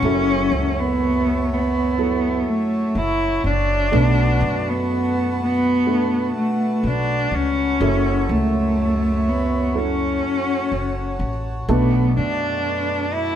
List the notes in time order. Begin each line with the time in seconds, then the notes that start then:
Already playing: C#4 A5
0.02 F#1 F#2 F#3 E4 F#4 A4 C#5 E5
0.51 C#2
0.79 B3
1.53 B3
1.98 F#3 E4 A4
2.48 A3
2.95 F#1 E4
3.44 F#1 D4
3.92 B1 B2 A3 D4 B4 F#5 A5
4.41 F#2
4.69 B3
5.42 B3
5.87 A3 D4 B4
6.37 A3
6.83 B1 D4
7.31 C#2 C#4
7.80 F#1 F#2 F#3 E4 F#4 A4 C#5 E5
8.29 C#2 A3
9.27 B3
9.74 F#3 C#4 E4 A4 F#5
10.72 F#1
11.19 A1
11.69 B1 B2 A3 B3 D4 B4 D5
12.16 F#2 D4
13.14 E4